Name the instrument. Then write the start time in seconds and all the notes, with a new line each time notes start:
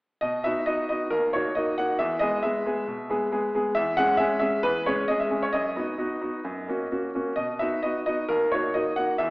grand piano
0.21 B2 D#5
0.44 B3 D#4 F#4 E5
0.66 B3 D#4 F#4 D#5
0.89 B3 D#4 F#4 D#5
1.10 D#2 A#4
1.33 A#3 D#4 F#4 C#5
1.55 A#3 D#4 F#4 D#5
1.78 A#3 D#4 F#4 F#5
1.99 E2 E5
2.19 G#3 B3 G#4 D#5
2.43 G#3 B3 G#4 E5
2.66 G#3 B3 G#4
2.87 B2
3.10 G#3 B3 G#4
3.32 G#3 B3 G#4
3.55 G#3 B3 G#4
3.75 E2 E5
3.97 G#3 C#4 G#4 F#5
4.17 G#3 C#4 G#4 E5
4.39 G#3 C#4 G#4 E5
4.63 E2 B4
4.86 G#3 C#4 G#4 C#5
5.08 G#3 C#4 G#4 D#5
5.20 E5
5.31 G#3 C#4 G#4
5.43 C#5
5.53 F#2 D#5
5.76 B3 D#4 F#4
5.98 B3 D#4 F#4
6.21 B3 D#4 F#4
6.44 F#2
6.68 A#3 C#4 F#4
6.92 A#3 C#4 F#4
7.15 A#3 C#4 F#4
7.36 B2 D#5
7.59 B3 D#4 F#4 E5
7.83 B3 D#4 F#4 D#5
8.06 B3 D#4 F#4 D#5
8.29 D#2 A#4
8.52 A#3 D#4 F#4 C#5
8.74 A#3 D#4 F#4 D#5
8.96 A#3 D#4 F#4 F#5
9.18 E2 E5